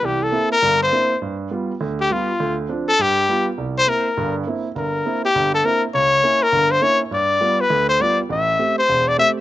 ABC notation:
X:1
M:4/4
L:1/8
Q:"Swing" 1/4=204
K:C
V:1 name="Trumpet"
G A2 _B2 c3 | z4 z G F2- | F z2 A G3 z | z c _B3 z3 |
_B3 G2 A B z | ^c3 ^A2 =c ^c z | d3 B2 c d z | e3 c2 d e z |]
V:2 name="Grand piano"
[C,,E,]2 [_B,CE] z [G,,,G,,]2 [B,CE] z | G,,2 [G,B,F] z D,,2 [G,B,F] z | D,,2 [F,CD] z G,,2 [G,B,F] z | C,,2 [_B,CE] z [G,,,G,,]2 [B,CE] z |
G,,,2 [_B,CE] z G,,,2 [B,CE] z | ^C,,2 [^A,^CE] z G,,,2 [A,CE] z | G,,2 [G,B,F] z D,,2 [G,B,F] z | A,,,2 [A,CG] z E,,,2 [A,CG] z |]